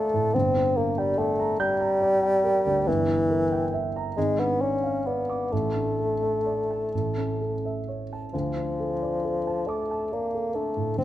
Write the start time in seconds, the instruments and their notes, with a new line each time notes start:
Already playing: grand piano D2 D5 F5 A5 D6 A6, bassoon A3
0.14 grand piano A2
0.34 grand piano G1, bassoon C4
0.57 grand piano D4
0.77 bassoon A#3, grand piano A#4
0.98 bassoon G3, grand piano G5
1.18 bassoon A3, grand piano D5
1.39 grand piano A#5
1.60 bassoon G3, grand piano G6
1.80 grand piano A#5
2.02 grand piano D5
2.23 grand piano G5
2.44 grand piano A#4
2.66 grand piano D2
2.88 grand piano G1, bassoon E3
3.08 grand piano E4
3.30 grand piano A#4
3.52 grand piano G5
3.74 grand piano E5
3.96 grand piano A#5
4.17 grand piano G#1, bassoon G#3
4.40 bassoon B3, grand piano D4
4.61 bassoon C#4, grand piano D5
4.84 grand piano F5
5.07 bassoon B3, grand piano D5
5.29 grand piano D6
5.52 grand piano A1, bassoon A3
5.76 grand piano D4
5.99 grand piano A4
6.23 grand piano E5
6.46 grand piano D5
6.71 grand piano A5
6.94 grand piano A1
7.18 grand piano C#4
7.41 grand piano A4
7.65 grand piano E5
7.88 grand piano C#5
8.13 grand piano A5
8.33 grand piano D2, bassoon F3
8.57 grand piano D4
8.80 grand piano A4
9.02 grand piano D5
9.25 grand piano A4
9.47 grand piano A5
9.68 bassoon A3, grand piano D6
9.91 grand piano A5
10.13 bassoon A#3, grand piano D5
10.34 grand piano A4
10.55 bassoon A3, grand piano D4
10.77 grand piano A2
10.98 grand piano G1, bassoon C4